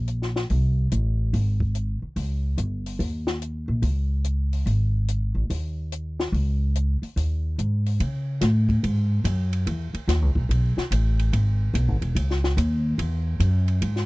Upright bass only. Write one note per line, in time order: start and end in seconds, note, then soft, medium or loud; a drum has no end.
0.00 0.46 A#1 medium
0.50 0.89 C2 medium
0.92 1.30 A1 medium
1.33 1.98 G#1 medium
2.02 muted upright bass stroke soft
2.16 2.55 C#2 medium
2.58 2.96 G1 medium
2.99 3.64 D#2 medium
3.68 3.81 A#1 medium
3.82 4.62 C#2 medium
4.66 5.31 G#1 medium
5.35 5.48 A1 medium
5.50 6.29 D#2 medium
6.32 6.98 C#2 medium
7.02 muted upright bass stroke soft
7.16 7.55 D#2 medium
7.58 7.97 G#2 medium
8.00 8.40 C#3 medium
8.42 8.82 A2 medium
8.83 9.23 G#2 medium
9.24 9.65 F#2 medium
9.67 9.92 E2 medium
9.94 muted upright bass stroke soft
10.08 10.22 D#2 medium
10.22 10.35 C#2 medium
10.35 10.48 B1 medium
10.49 10.75 B1 medium
10.77 muted upright bass stroke soft
10.91 11.31 A1 medium
11.33 11.73 G#1 medium
11.74 11.88 B1 medium
11.88 12.01 G#1 medium
12.02 12.14 E1 medium
12.15 12.56 C#2 medium
12.57 12.97 D#2 medium
12.98 13.39 E2 medium
13.40 13.80 F#2 medium
13.82 14.06 G#2 medium